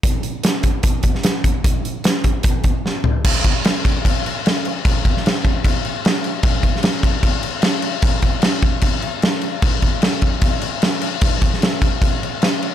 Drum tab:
CC |----------------|----------------|x-x-x-x-x-x-x-x-|x-x-x-x-x-x-x-x-|
HH |x-x-x-x-x-x-x-x-|x-x-x-x-x-x-----|----------------|----------------|
SD |----o------oo---|----o-------o---|----o-------o---|---oo-------o---|
FT |----------------|--------------o-|----------------|----------------|
BD |o-----o-o-o---o-|o-----o-o-o-----|o-o---o-o-------|o-o---o-o-------|

CC |x-x-x-x-x-x-x-x-|x-x-x-x-x-x-x-x-|x-x-x-x-x-x-x-x-|x-x-x-x-x-x-x-x-|
HH |----------------|----------------|----------------|----------------|
SD |---oo-------o---|----o-------o---|----o-------o---|---oo-------o---|
FT |----------------|----------------|----------------|----------------|
BD |o-o---o-o-------|o-o---o-o-------|o-o---o-o-------|o-o---o-o-------|